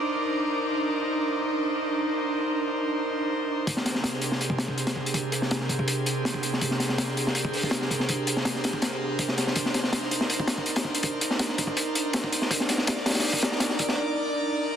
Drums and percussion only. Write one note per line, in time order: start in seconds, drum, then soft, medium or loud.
3.67 kick loud
3.67 closed hi-hat medium
3.77 snare soft
3.86 snare medium
3.86 closed hi-hat medium
3.95 snare soft
4.04 snare loud
4.04 closed hi-hat medium
4.13 snare soft
4.22 closed hi-hat medium
4.32 snare medium
4.41 closed hi-hat medium
4.50 kick medium
4.58 snare loud
4.58 closed hi-hat medium
4.68 kick medium
4.78 closed hi-hat medium
4.87 snare loud
4.87 closed hi-hat medium
4.96 kick medium
5.06 closed hi-hat medium
5.14 kick medium
5.14 closed hi-hat medium
5.32 closed hi-hat medium
5.42 snare soft
5.51 snare loud
5.51 closed hi-hat medium
5.61 snare soft
5.69 kick medium
5.69 closed hi-hat medium
5.79 kick medium
5.88 closed hi-hat medium
6.06 closed hi-hat medium
6.25 snare loud
6.25 closed hi-hat medium
6.34 kick medium
6.43 closed hi-hat medium
6.53 snare soft
6.61 kick loud
6.61 closed hi-hat medium
6.71 snare soft
6.80 snare medium
6.80 closed hi-hat medium
6.89 snare soft
6.98 snare loud
6.98 closed hi-hat medium
7.08 snare soft
7.17 closed hi-hat medium
7.27 snare medium
7.35 closed hi-hat medium
7.45 kick loud
7.53 open hi-hat medium
7.63 kick medium
7.71 snare loud
7.71 closed hi-hat medium
7.82 snare medium
7.91 kick medium
7.91 closed hi-hat medium
8.00 snare soft
8.09 kick loud
8.09 closed hi-hat medium
8.27 closed hi-hat medium
8.37 snare soft
8.45 snare loud
8.45 closed hi-hat medium
8.55 snare soft
8.64 snare loud
8.64 closed hi-hat medium
8.73 kick loud
8.82 snare loud
8.82 closed hi-hat medium
9.19 kick medium
9.19 closed hi-hat medium
9.28 snare soft
9.38 snare soft
9.38 closed hi-hat medium
9.47 snare soft
9.56 kick loud
9.56 closed hi-hat medium
9.66 snare soft
9.74 snare medium
9.74 closed hi-hat medium
9.84 snare soft
9.93 snare loud
9.93 closed hi-hat medium
10.03 snare soft
10.11 closed hi-hat medium
10.21 snare medium
10.30 closed hi-hat medium
10.40 kick medium
10.47 snare loud
10.47 closed hi-hat medium
10.58 kick medium
10.66 closed hi-hat medium
10.76 snare loud
10.76 closed hi-hat medium
10.84 kick medium
10.95 closed hi-hat medium
11.03 kick loud
11.03 closed hi-hat medium
11.21 closed hi-hat medium
11.31 snare soft
11.39 snare loud
11.39 closed hi-hat medium
11.49 snare soft
11.58 kick loud
11.58 closed hi-hat medium
11.67 kick loud
11.77 closed hi-hat medium
11.95 closed hi-hat medium
12.13 snare loud
12.13 closed hi-hat medium
12.24 kick medium
12.32 closed hi-hat medium
12.42 snare soft
12.51 kick loud
12.51 closed hi-hat medium
12.60 snare soft
12.69 snare medium
12.69 closed hi-hat medium
12.78 snare soft
12.87 snare loud
12.87 closed hi-hat medium
12.96 snare soft
13.06 snare medium
13.06 closed hi-hat medium
13.10 snare medium
13.10 closed hi-hat medium
13.15 snare loud
13.15 closed hi-hat medium
13.20 snare medium
13.20 closed hi-hat medium
13.24 open hi-hat medium
13.33 kick medium
13.42 snare loud
13.42 closed hi-hat medium
13.52 snare soft
13.60 snare loud
13.60 closed hi-hat medium
13.70 snare medium
13.79 kick medium
13.79 closed hi-hat medium
13.89 snare soft